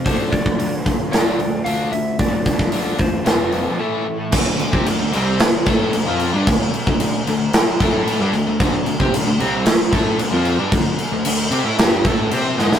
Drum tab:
CC |----------------|----------------|x-x-x-x-x-x-x-x-|x-x-x-x-x-x-x-x-|
HH |o-o-o-o-o-o-o-o-|o-o-o-o-o-o-----|----------------|----------------|
SD |--------o-------|---o----o-------|--------o-------|--------o-------|
BD |o-oo--o---------|o-oo--o---------|o--o------o-----|o--o------o-----|

CC |x-x-x-x-x-x-x-x-|x-x-x-x-x-x-x---|
HH |----------------|----------------|
SD |--------o-------|--------o-----oo|
BD |o--o------o-----|o---------o-----|